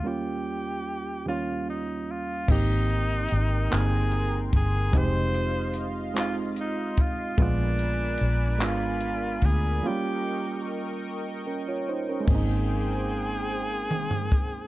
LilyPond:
<<
  \new Staff \with { instrumentName = "Analog synth pad" } { \time 6/8 \key aes \major \tempo 4. = 49 << { r2. | c'''2.~ | c'''2. | ces'''2. |
des'''2. | <bes aes' c'' g''>2. | } \\ { r2. | <bes' g'' bes''>2. | <f' ees'' f''>2. | <bes' d'' aes''>2. |
<bes' ees'' g''>2. | r2. | } >> }
  \new Staff \with { instrumentName = "Tenor saxophone" } { \time 6/8 \key aes \major g'4. f'8 ees'8 f'8 | ees'4. aes'4 aes'8 | c''4 r8 f'8 ees'8 f'8 | d'4. f'4 aes'8 |
g'4 r2 | aes'2. | }
  \new Staff \with { instrumentName = "Reed electric piano" } { \time 6/8 \key aes \major << { r2. | r2. | r2. | r2. |
r2 <des' bes'>16 <f' des''>16 <ees' c''>16 <des' bes'>16~ | <des' bes'>16 r2 r8. | } \\ { <ees, g bes des' f'>4. <ees, g bes des' f'>4. | <bes c' ees' g'>4. <bes c' ees' bes'>4. | <g aes c' ees' g'>4. <aes c' ees' f'>4. | <aes ces' d' f'>4. <aes ces' d' f'>4. |
<f g bes des' f'>4. r4. | <aes bes c' ees'>2. | } >> }
  \new Staff \with { instrumentName = "Fingered electric bass" } { \clef bass \time 6/8 \key aes \major r2. | aes,,4 aes,,8 g,,4 g,,8 | f,,2~ f,,8 aes,,8 | bes,,4 bes,,8 aes,,4 d,8 |
r2. | aes,,2. | }
  \new DrumStaff \with { instrumentName = "Drums" } \drummode { \time 6/8 r4. r4. | <cymc bd>8 hh8 hh8 <hc hh>8 hh8 <hh bd>8 | <hh bd>8 hh8 hh8 <hc hh>8 hh8 <hh bd>8 | <hh bd>8 hh8 hh8 <hc hh>8 hh8 <hh bd>8 |
r4. r4. | <cymc bd>4. r8 toml16 tomfh16 bd8 | }
>>